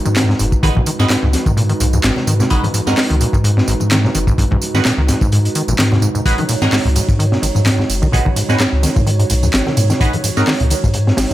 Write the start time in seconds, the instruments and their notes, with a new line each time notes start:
Already playing: analog synth pad G#3 D#4 F#4 B4
0.05 sub bass G#2, acid bass D#3, tambourine, high conga
0.16 acid bass G#2, snare, clap, closed hi-hat, tambourine
0.29 acid bass G#2, snare
0.39 sub bass F#1, acid bass G#2, closed hi-hat, tambourine
0.52 kick, tambourine
0.63 sub bass G#1, acid bass D#3, synth stab G#3 D#4 F#4 B4, kick, closed hi-hat, tambourine
0.75 acid bass A#2, kick, high conga
0.86 acid bass D#3, closed hi-hat, tambourine
0.99 acid bass G#2, sub bass G#2, synth stab G#3 D#4 F#4 B4, snare, tambourine
1.10 acid bass G#2, snare, clap, closed hi-hat, tambourine
1.23 sub bass C#2, acid bass G#2
1.33 snare, closed hi-hat, tambourine, high conga
1.46 sub bass G#2, acid bass D#3, kick, tambourine
1.57 acid bass A#2, closed hi-hat, tambourine
1.69 acid bass D#3, closed hi-hat
1.80 sub bass B1, acid bass G#2, closed hi-hat, tambourine
1.93 sub bass D#2, acid bass G#2, tambourine, high conga
2.04 sub bass G#1, acid bass G#2, snare, clap, closed hi-hat, tambourine
2.16 snare, low conga
2.27 sub bass G#2, acid bass D#3, closed hi-hat, tambourine
2.40 acid bass A#2, snare, tambourine, low conga
2.50 sub bass G#1, acid bass D#3, synth stab G#3 D#4 F#4 B4, kick, closed hi-hat, tambourine
2.64 acid bass G#2, closed hi-hat, high conga
2.74 acid bass G#2, closed hi-hat, tambourine
2.87 acid bass G#2, sub bass G#2, synth stab G#3 D#4 F#4 A#4, snare, tambourine
2.98 snare, clap, open hi-hat, tambourine
3.10 sub bass C#2, acid bass D#3, closed hi-hat
3.20 acid bass A#2, closed hi-hat, tambourine, high conga
3.33 sub bass G#2, acid bass D#3, kick, tambourine
3.44 acid bass G#2, closed hi-hat, tambourine
3.57 acid bass G#2, snare
3.68 sub bass G#1, acid bass G#2, closed hi-hat, tambourine
3.80 sub bass G#2, tambourine, high conga
3.91 acid bass D#3, snare, clap, closed hi-hat, tambourine
4.04 acid bass A#2, snare
4.15 sub bass F#1, acid bass D#3, closed hi-hat, tambourine
4.27 acid bass G#2, kick, tambourine
4.38 sub bass G#1, acid bass G#2, kick, closed hi-hat, tambourine
4.51 acid bass G#2, kick, high conga
4.62 closed hi-hat, tambourine
4.74 sub bass G#2, acid bass D#3, synth stab G#3 D#4 F#4 B4, snare, tambourine
4.85 acid bass A#2, snare, clap, closed hi-hat, tambourine
4.98 sub bass C#2, acid bass D#3
5.08 acid bass G#2, snare, closed hi-hat, tambourine, high conga
5.21 sub bass G#2, acid bass G#2, kick, tambourine
5.32 acid bass G#2, closed hi-hat, tambourine
5.45 closed hi-hat
5.55 acid bass D#3, closed hi-hat, tambourine
5.68 sub bass G#1, acid bass A#2, tambourine, high conga
5.79 sub bass G#2, acid bass D#3, snare, clap, closed hi-hat, tambourine
5.92 acid bass G#2, snare, low conga
6.02 acid bass G#2, tambourine
6.15 acid bass G#2, tambourine, low conga
6.25 sub bass G#1, synth stab G#3 D#4 F#4 B4, analog synth pad C#5, kick, closed hi-hat, tambourine
6.38 acid bass D#3, closed hi-hat, high conga
6.49 acid bass A#2, closed hi-hat, ride, tambourine
6.62 sub bass G#2, acid bass D#3, synth stab G#3 D#4 F#4 A#4, snare, tambourine
6.72 acid bass G#2, snare, clap, open hi-hat, tambourine
6.85 sub bass C#2, acid bass G#2, closed hi-hat
6.96 acid bass G#2, closed hi-hat, ride, tambourine, high conga
7.09 sub bass G#2, kick, tambourine
7.19 acid bass D#3, closed hi-hat, tambourine
7.32 acid bass A#2, snare
7.42 sub bass G#1, acid bass D#3, closed hi-hat, ride, tambourine
7.55 acid bass G#2, sub bass G#2, tambourine, high conga
7.65 acid bass G#2, snare, clap, closed hi-hat, tambourine
7.79 acid bass G#2, snare
7.89 sub bass F#1, closed hi-hat, ride, tambourine
8.02 acid bass D#3, kick, tambourine
8.12 sub bass G#1, acid bass A#2, synth stab G#3 D#4 F#4 B4, kick, closed hi-hat, tambourine
8.25 acid bass D#3, kick, high conga
8.36 acid bass G#2, closed hi-hat, ride, tambourine
8.49 acid bass G#2, sub bass G#2, synth stab G#3 D#4 F#4 B4, snare, tambourine
8.59 acid bass G#2, snare, clap, closed hi-hat, tambourine
8.72 sub bass C#2
8.83 acid bass D#3, snare, closed hi-hat, ride, tambourine, high conga
8.96 sub bass G#2, acid bass A#2, kick, tambourine
9.06 acid bass D#3, closed hi-hat, tambourine
9.20 acid bass G#2, closed hi-hat
9.30 sub bass B1, acid bass G#2, closed hi-hat, ride, tambourine
9.43 sub bass D#2, acid bass G#2, tambourine, high conga
9.53 sub bass G#1, snare, clap, closed hi-hat, tambourine
9.66 acid bass D#3, snare, low conga
9.77 sub bass G#2, acid bass A#2, closed hi-hat, ride, tambourine
9.90 acid bass D#3, snare, tambourine, low conga
10.00 sub bass G#1, acid bass G#2, synth stab G#3 D#4 F#4 B4, kick, closed hi-hat, tambourine
10.13 acid bass G#2, closed hi-hat, high conga
10.24 acid bass G#2, closed hi-hat, ride, tambourine
10.37 sub bass G#2, synth stab G#3 D#4 F#4 A#4, snare, tambourine
10.47 acid bass D#3, snare, clap, open hi-hat, tambourine
10.60 sub bass C#2, acid bass A#2, closed hi-hat
10.70 acid bass D#3, closed hi-hat, ride, tambourine, high conga
10.84 sub bass G#2, acid bass G#2, kick, tambourine
10.94 acid bass G#2, closed hi-hat, tambourine
11.07 acid bass G#2, snare
11.17 sub bass G#1, snare, open hi-hat, ride, tambourine